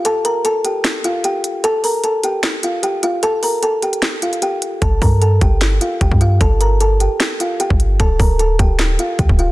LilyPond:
<<
  \new Staff \with { instrumentName = "Kalimba" } { \time 4/4 \key g \minor \tempo 4 = 151 <a' a''>8 <bes' bes''>8 <a' a''>8 <g' g''>4 <f' f''>8 <g' g''>8 r8 | <a' a''>8 <bes' bes''>8 <a' a''>8 <g' g''>8 r8 <f' f''>8 <g' g''>8 <f' f''>8 | <a' a''>8 <bes' bes''>8 <a' a''>8 <g' g''>4 <f' f''>8 <g' g''>8 r8 | <a' a''>8 <bes' bes''>8 <a' a''>8 <g' g''>8 r8 <f' f''>8 <g' g''>8 <f' f''>8 |
<a' a''>8 <bes' bes''>8 <a' a''>8 <g' g''>4 <f' f''>8 <g' g''>8 r8 | <a' a''>8 <bes' bes''>8 <a' a''>8 <g' g''>8 r8 <f' f''>8 <g' g''>8 <f' f''>8 | }
  \new Staff \with { instrumentName = "808-style bass" } { \clef bass \time 4/4 \key g \minor r1 | r1 | r1 | g,,8 g,4 g,,4 r8 g,,16 g,8. |
g,,4.~ g,,16 r4. g,,8. | d,,8 d,,4 d,,4 r8 d,16 d,,8. | }
  \new DrumStaff \with { instrumentName = "Drums" } \drummode { \time 4/4 hh8 hh8 hh8 hh8 <hc hh sn>8 hh8 hh8 hh8 | hh8 hho8 hh8 hh8 <hc hh sn>8 hh8 hh8 hh8 | hh8 hho8 hh8 hh16 hh16 <hc hh sn>8 hh16 hh16 hh8 hh8 | <hh bd>8 <hho bd>8 hh8 <hh bd>8 <hc hh sn>8 hh8 <hh bd>16 bd16 hh8 |
<hh bd>8 hh8 hh8 hh8 <hc hh sn>8 hh8 hh16 bd16 hh8 | <hh bd>8 <hho bd>8 hh8 <hh bd>8 <hc hh sn>8 hh8 <hh bd>16 bd16 hh8 | }
>>